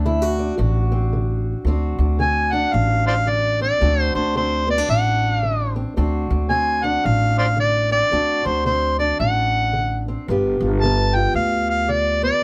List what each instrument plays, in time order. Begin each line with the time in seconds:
Already playing: upright bass D2, steel-string acoustic guitar C4 D4
0.05 steel-string acoustic guitar D3 E4
0.22 steel-string acoustic guitar F#4
0.39 steel-string acoustic guitar D4
0.57 upright bass A1, steel-string acoustic guitar A2 F#4
0.92 steel-string acoustic guitar C4
1.13 steel-string acoustic guitar D3
1.65 upright bass D2, steel-string acoustic guitar D2 C4 D4 F#4
1.99 upright bass D2, steel-string acoustic guitar D4
2.19 steel-string acoustic guitar D3 C4, harmonica G#5
2.53 steel-string acoustic guitar D4, harmonica F#5
2.72 upright bass A1, steel-string acoustic guitar A2, harmonica F5
3.07 harmonica C5 D5 F5
3.27 steel-string acoustic guitar D3, harmonica D5
3.61 steel-string acoustic guitar C4, harmonica D5
3.80 steel-string acoustic guitar D2 C4 D4 F#4, upright bass D2
4.15 upright bass D2, steel-string acoustic guitar D4, harmonica C5
4.35 steel-string acoustic guitar D3 C4, harmonica C5
4.67 steel-string acoustic guitar B3, harmonica D5
4.78 steel-string acoustic guitar D4
4.89 upright bass A1, steel-string acoustic guitar A2, harmonica F#5
5.43 steel-string acoustic guitar D3
5.76 steel-string acoustic guitar C4
5.96 steel-string acoustic guitar D2 C4 D4 F#4, upright bass D2
6.30 upright bass D2, steel-string acoustic guitar D4
6.49 steel-string acoustic guitar D3 C4, harmonica G#5
6.84 steel-string acoustic guitar D4, harmonica F#5
7.04 upright bass A1, steel-string acoustic guitar A2, harmonica F5
7.39 harmonica C5 D5 F5
7.57 steel-string acoustic guitar D3, harmonica D5
7.91 steel-string acoustic guitar C4, harmonica D5
8.11 steel-string acoustic guitar D2 C4 D4 F#4, upright bass D2
8.45 upright bass D2, steel-string acoustic guitar D4, harmonica C5
8.65 steel-string acoustic guitar D3 C4, harmonica C5
8.99 steel-string acoustic guitar D4, harmonica D5
9.20 upright bass A1, steel-string acoustic guitar A2, harmonica F#5
9.73 steel-string acoustic guitar D3
10.08 steel-string acoustic guitar C4
10.28 upright bass G1, steel-string acoustic guitar G2 B3 F4 G4
10.61 upright bass G1, steel-string acoustic guitar F4
10.82 steel-string acoustic guitar D3 B3, harmonica A5
11.15 steel-string acoustic guitar F4, harmonica G5
11.34 upright bass D2, steel-string acoustic guitar D3, harmonica F5
11.70 harmonica F5
11.88 steel-string acoustic guitar D3, harmonica D5
12.22 steel-string acoustic guitar B3, harmonica D5